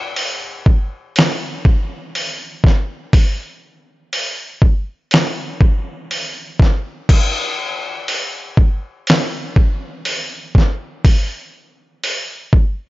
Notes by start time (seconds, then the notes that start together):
0.16 open hi-hat
0.66 kick
1.16 snare, open hi-hat
1.65 kick
2.15 open hi-hat
2.64 kick, snare
3.13 kick, open hi-hat
4.13 open hi-hat
4.62 kick
5.11 snare, open hi-hat
5.61 kick
6.11 open hi-hat
6.60 kick, snare
7.09 kick, crash
8.08 open hi-hat
8.57 kick
9.07 snare, open hi-hat
9.56 kick
10.05 open hi-hat
10.55 kick, snare
11.05 kick, open hi-hat
12.04 open hi-hat
12.53 kick